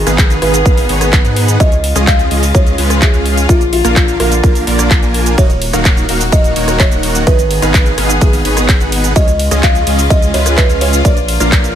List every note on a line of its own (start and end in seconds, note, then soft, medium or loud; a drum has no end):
0.00 1.56 D#3 medium
0.00 1.58 B3 medium
0.00 0.43 G#4 loud
0.00 1.58 G#4 loud
0.07 0.40 G#1 loud
0.07 0.39 B3 loud
0.07 0.39 D#4 medium
0.07 0.39 G#4 medium
0.07 0.39 B4 medium
0.07 0.39 F5 loud
0.07 cross-stick medium
0.07 closed hi-hat medium
0.07 shaker medium
0.18 kick loud
0.18 clap loud
0.18 closed hi-hat medium
0.18 shaker medium
0.30 closed hi-hat soft
0.30 shaker soft
0.42 0.63 G#1 loud
0.42 0.55 B3 medium
0.42 0.55 D#4 medium
0.42 0.55 G#4 medium
0.42 1.32 B4 medium
0.42 0.55 B4 medium
0.42 0.55 F5 loud
0.42 cross-stick medium
0.42 open hi-hat loud
0.54 closed hi-hat medium
0.54 shaker medium
0.66 0.87 G#1 loud
0.66 0.86 B3 medium
0.66 0.86 D#4 medium
0.66 0.86 G#4 medium
0.66 0.86 B4 medium
0.66 0.86 F5 medium
0.66 kick loud
0.66 closed hi-hat medium
0.66 shaker medium
0.77 open hi-hat medium
0.77 shaker soft
0.89 1.22 G#1 loud
0.89 1.22 B3 medium
0.89 1.22 D#4 medium
0.89 1.22 G#4 medium
0.89 1.22 B4 medium
0.89 1.22 C#5 loud
0.89 open hi-hat loud
1.01 cross-stick medium
1.01 closed hi-hat medium
1.01 shaker medium
1.13 kick loud
1.13 clap loud
1.13 closed hi-hat medium
1.13 shaker medium
1.25 1.58 G#2 loud
1.25 1.57 B3 medium
1.25 1.57 D#4 medium
1.25 1.57 G#4 medium
1.25 1.57 B4 medium
1.25 1.57 F#5 medium
1.25 closed hi-hat soft
1.25 shaker soft
1.36 open hi-hat loud
1.48 closed hi-hat medium
1.48 shaker medium
1.60 1.93 C#2 loud
1.60 3.47 C#3 medium
1.60 3.47 G#3 medium
1.60 1.73 G#3 medium
1.60 1.73 C#4 medium
1.60 1.73 F4 medium
1.60 5.34 F4 loud
1.60 1.73 G#4 medium
1.60 1.73 C#5 medium
1.60 2.04 D#5 loud
1.60 kick loud
1.60 closed hi-hat medium
1.60 shaker medium
1.72 closed hi-hat soft
1.72 shaker soft
1.84 open hi-hat loud
1.96 2.29 C#2 loud
1.96 2.28 G#3 loud
1.96 2.28 C#4 medium
1.96 2.28 F4 medium
1.96 2.28 G#4 medium
1.96 2.28 D#5 loud
1.96 cross-stick medium
1.96 closed hi-hat medium
1.96 shaker medium
2.07 2.56 F5 loud
2.07 kick loud
2.07 clap loud
2.07 closed hi-hat medium
2.07 shaker medium
2.19 closed hi-hat soft
2.19 shaker soft
2.31 2.52 C#2 loud
2.31 2.44 G#3 medium
2.31 2.44 C#4 medium
2.31 2.44 F4 medium
2.31 2.44 G#4 medium
2.31 2.44 D#5 loud
2.31 open hi-hat loud
2.43 open hi-hat medium
2.43 shaker medium
2.55 2.76 C#2 loud
2.55 2.75 G#3 medium
2.55 2.75 C#4 medium
2.55 2.75 F4 medium
2.55 2.75 G#4 medium
2.55 3.03 C#5 loud
2.55 2.75 D#5 medium
2.55 kick loud
2.55 closed hi-hat medium
2.55 shaker medium
2.67 closed hi-hat soft
2.67 shaker soft
2.78 3.11 C#2 loud
2.78 3.11 G#3 medium
2.78 3.11 C#4 medium
2.78 3.11 F4 medium
2.78 3.11 G#4 medium
2.78 3.11 B4 loud
2.78 open hi-hat loud
2.90 cross-stick medium
2.90 closed hi-hat medium
2.90 shaker medium
3.02 3.51 G#4 loud
3.02 kick loud
3.02 clap loud
3.02 closed hi-hat medium
3.02 shaker medium
3.14 3.47 C#2 loud
3.14 3.46 G#3 medium
3.14 3.46 C#4 medium
3.14 3.46 F4 medium
3.14 3.46 G#4 medium
3.14 3.46 F5 medium
3.14 closed hi-hat soft
3.14 shaker soft
3.26 open hi-hat loud
3.37 closed hi-hat medium
3.37 shaker medium
3.49 3.82 A#1 loud
3.49 5.36 D3 medium
3.49 3.62 A#3 medium
3.49 7.23 A#3 medium
3.49 3.62 D4 medium
3.49 3.72 F4 loud
3.49 3.62 F4 medium
3.49 3.62 A#4 medium
3.49 3.62 D5 medium
3.49 kick loud
3.49 closed hi-hat medium
3.49 shaker medium
3.61 closed hi-hat soft
3.61 shaker soft
3.73 4.21 F4 medium
3.73 open hi-hat loud
3.84 4.18 A#1 loud
3.84 4.17 A#3 loud
3.84 4.17 D4 medium
3.84 4.17 F4 medium
3.84 4.17 A#4 medium
3.84 4.17 F5 loud
3.84 cross-stick medium
3.84 closed hi-hat soft
3.84 shaker medium
3.96 kick loud
3.96 clap loud
3.96 closed hi-hat medium
3.96 shaker medium
4.08 closed hi-hat soft
4.08 shaker soft
4.20 4.41 A#1 loud
4.20 4.33 A#3 medium
4.20 4.33 D4 medium
4.20 4.33 F4 medium
4.20 4.33 A#4 medium
4.20 5.10 A#4 medium
4.20 4.33 F5 loud
4.20 cross-stick medium
4.20 open hi-hat loud
4.32 closed hi-hat medium
4.32 shaker medium
4.43 4.65 A#1 loud
4.43 4.64 A#3 medium
4.43 4.64 D4 medium
4.43 4.64 F4 medium
4.43 4.64 A#4 medium
4.43 4.64 F5 medium
4.43 kick loud
4.43 closed hi-hat soft
4.43 shaker medium
4.55 open hi-hat medium
4.55 shaker soft
4.67 5.00 A#1 loud
4.67 5.00 A#3 medium
4.67 5.00 D4 medium
4.67 5.00 F4 medium
4.67 5.00 A#4 medium
4.67 5.00 D5 loud
4.67 open hi-hat loud
4.79 cross-stick medium
4.79 closed hi-hat soft
4.79 shaker medium
4.91 kick loud
4.91 clap loud
4.91 closed hi-hat soft
4.91 shaker medium
5.03 5.36 A#1 loud
5.03 5.35 A#3 medium
5.03 5.35 D4 medium
5.03 5.35 F4 medium
5.03 5.35 A#4 medium
5.03 5.35 G#5 medium
5.03 closed hi-hat soft
5.03 shaker soft
5.14 open hi-hat loud
5.26 closed hi-hat soft
5.26 shaker medium
5.38 5.71 D#1 loud
5.38 9.12 D#3 medium
5.38 5.51 A#3 medium
5.38 5.51 D#4 medium
5.38 5.51 F#4 medium
5.38 7.25 F#4 loud
5.38 5.51 A#4 medium
5.38 6.35 C#5 loud
5.38 5.51 D#5 medium
5.38 kick loud
5.38 closed hi-hat medium
5.38 ride medium
5.38 shaker medium
5.50 closed hi-hat soft
5.50 shaker soft
5.62 open hi-hat loud
5.62 ride medium
5.73 6.07 D#1 loud
5.73 6.06 A#3 loud
5.73 6.06 D#4 medium
5.73 6.06 F#4 medium
5.73 6.06 A#4 medium
5.73 6.06 F5 loud
5.73 cross-stick medium
5.73 closed hi-hat soft
5.73 shaker medium
5.85 kick loud
5.85 clap loud
5.85 closed hi-hat medium
5.85 ride medium
5.85 shaker medium
5.97 closed hi-hat soft
5.97 shaker soft
6.09 6.30 D#1 loud
6.09 6.22 A#3 medium
6.09 6.22 D#4 medium
6.09 6.22 F#4 medium
6.09 6.22 A#4 medium
6.09 6.22 F5 loud
6.09 open hi-hat loud
6.09 ride medium
6.21 open hi-hat medium
6.21 shaker medium
6.32 6.54 D#1 loud
6.32 6.53 A#3 medium
6.32 6.53 D#4 medium
6.32 6.53 F#4 medium
6.32 6.53 A#4 medium
6.32 6.76 D#5 loud
6.32 6.53 F5 medium
6.32 kick loud
6.32 closed hi-hat medium
6.32 ride medium
6.32 shaker medium
6.44 closed hi-hat soft
6.44 shaker soft
6.56 6.89 D#1 loud
6.56 6.89 A#3 medium
6.56 6.89 D#4 medium
6.56 6.89 F#4 medium
6.56 6.89 A#4 medium
6.56 6.89 C#5 loud
6.56 open hi-hat loud
6.56 ride medium
6.68 cross-stick medium
6.68 closed hi-hat soft
6.68 shaker medium
6.79 7.28 C#5 loud
6.79 kick loud
6.79 clap loud
6.79 closed hi-hat medium
6.79 ride medium
6.79 shaker medium
6.91 7.25 D#1 loud
6.91 7.24 A#3 medium
6.91 7.24 D#4 medium
6.91 7.24 F#4 medium
6.91 7.24 A#4 medium
6.91 7.24 F#5 medium
6.91 closed hi-hat soft
6.91 shaker soft
7.03 open hi-hat loud
7.03 ride medium
7.15 closed hi-hat medium
7.15 shaker medium
7.27 7.60 G#1 loud
7.27 9.14 B3 medium
7.27 7.40 B3 medium
7.27 7.40 D#4 medium
7.27 9.14 G#4 loud
7.27 7.40 G#4 medium
7.27 8.17 B4 loud
7.27 7.40 B4 medium
7.27 7.40 D#5 medium
7.27 kick loud
7.27 closed hi-hat medium
7.27 ride medium
7.27 shaker medium
7.39 closed hi-hat soft
7.39 shaker soft
7.51 open hi-hat loud
7.51 ride medium
7.62 7.95 G#1 loud
7.62 7.95 B3 loud
7.62 7.95 D#4 medium
7.62 7.95 G#4 medium
7.62 7.95 B4 medium
7.62 7.95 F5 loud
7.62 cross-stick medium
7.62 closed hi-hat medium
7.62 shaker medium
7.74 kick loud
7.74 clap loud
7.74 closed hi-hat medium
7.74 ride medium
7.74 shaker medium
7.86 closed hi-hat soft
7.86 shaker soft
7.98 8.19 G#1 loud
7.98 8.11 B3 medium
7.98 8.11 D#4 medium
7.98 8.11 G#4 medium
7.98 8.11 B4 medium
7.98 8.11 F5 loud
7.98 cross-stick medium
7.98 open hi-hat loud
7.98 ride medium
8.10 closed hi-hat medium
8.10 shaker medium
8.21 8.43 G#1 loud
8.21 8.42 B3 medium
8.21 8.42 D#4 medium
8.21 8.42 G#4 medium
8.21 8.88 G#4 medium
8.21 8.42 B4 medium
8.21 8.42 F5 medium
8.21 kick loud
8.21 closed hi-hat medium
8.21 ride medium
8.21 shaker medium
8.33 open hi-hat medium
8.33 shaker soft
8.45 8.78 G#1 loud
8.45 8.78 B3 medium
8.45 8.78 D#4 medium
8.45 8.78 G#4 medium
8.45 8.78 B4 medium
8.45 8.78 C#5 loud
8.45 open hi-hat loud
8.45 ride medium
8.57 cross-stick medium
8.57 closed hi-hat medium
8.57 shaker medium
8.69 kick loud
8.69 clap loud
8.69 closed hi-hat medium
8.69 ride medium
8.69 shaker medium
8.80 9.13 G#1 loud
8.80 9.13 B3 medium
8.80 9.13 D#4 medium
8.80 9.13 G#4 medium
8.80 9.13 B4 medium
8.80 9.13 F#5 medium
8.80 closed hi-hat soft
8.80 shaker soft
8.92 open hi-hat loud
8.92 ride medium
9.04 closed hi-hat medium
9.04 shaker medium
9.16 9.49 C#2 loud
9.16 11.03 C#3 medium
9.16 11.03 G#3 medium
9.16 9.29 G#3 medium
9.16 9.29 C#4 medium
9.16 11.75 F4 loud
9.16 9.29 F4 medium
9.16 9.29 G#4 medium
9.16 9.29 C#5 medium
9.16 9.65 D#5 loud
9.16 kick loud
9.16 closed hi-hat medium
9.16 ride medium
9.16 shaker medium
9.28 closed hi-hat soft
9.28 shaker soft
9.39 open hi-hat loud
9.39 ride medium
9.51 9.84 C#2 loud
9.51 9.84 G#3 loud
9.51 9.84 C#4 medium
9.51 9.84 F4 medium
9.51 9.84 G#4 medium
9.51 9.84 D#5 loud
9.51 cross-stick medium
9.51 closed hi-hat medium
9.51 shaker medium
9.63 10.12 F5 loud
9.63 kick loud
9.63 clap loud
9.63 closed hi-hat medium
9.63 ride medium
9.63 shaker medium
9.75 closed hi-hat soft
9.75 shaker soft
9.87 10.08 C#2 loud
9.87 10.00 G#3 loud
9.87 10.00 C#4 medium
9.87 10.00 F4 medium
9.87 10.00 G#4 medium
9.87 10.00 D#5 loud
9.87 open hi-hat loud
9.87 ride medium
9.99 open hi-hat medium
9.99 shaker medium
10.10 10.32 C#2 loud
10.10 10.31 G#3 medium
10.10 10.31 C#4 medium
10.10 10.31 F4 medium
10.10 10.31 G#4 medium
10.10 10.35 D#5 loud
10.10 10.31 D#5 medium
10.10 kick loud
10.10 closed hi-hat medium
10.10 ride medium
10.10 shaker medium
10.22 closed hi-hat soft
10.22 shaker soft
10.34 10.67 C#2 loud
10.34 10.67 G#3 medium
10.34 10.67 C#4 medium
10.34 10.67 F4 medium
10.34 10.67 G#4 medium
10.34 10.67 B4 loud
10.34 10.58 C#5 loud
10.34 open hi-hat loud
10.34 ride medium
10.46 cross-stick medium
10.46 closed hi-hat medium
10.46 shaker medium
10.58 10.68 B4 loud
10.58 kick loud
10.58 clap loud
10.58 closed hi-hat medium
10.58 ride medium
10.58 shaker medium
10.69 11.03 C#2 loud
10.69 11.02 G#3 medium
10.69 11.02 C#4 medium
10.69 11.02 F4 medium
10.69 11.02 G#4 medium
10.69 11.02 F5 medium
10.69 closed hi-hat soft
10.69 shaker soft
10.81 11.06 C#5 loud
10.81 open hi-hat loud
10.81 ride medium
10.93 closed hi-hat medium
10.93 shaker medium
11.05 11.38 A#1 loud
11.05 11.75 D3 medium
11.05 11.75 A#3 medium
11.05 11.18 A#3 medium
11.05 11.18 D4 medium
11.05 11.18 F4 medium
11.05 11.18 A#4 medium
11.05 11.75 D5 loud
11.05 11.18 D5 medium
11.05 kick loud
11.05 closed hi-hat medium
11.05 ride medium
11.05 shaker medium
11.17 closed hi-hat soft
11.17 shaker soft
11.28 open hi-hat loud
11.28 ride medium
11.40 11.73 A#1 loud
11.40 11.73 A#3 loud
11.40 11.73 D4 medium
11.40 11.73 F4 medium
11.40 11.73 A#4 medium
11.40 11.73 F5 loud
11.40 cross-stick medium
11.40 closed hi-hat medium
11.40 shaker medium
11.52 kick loud
11.52 clap loud
11.52 closed hi-hat medium
11.52 ride medium
11.52 shaker medium
11.64 closed hi-hat soft
11.64 shaker soft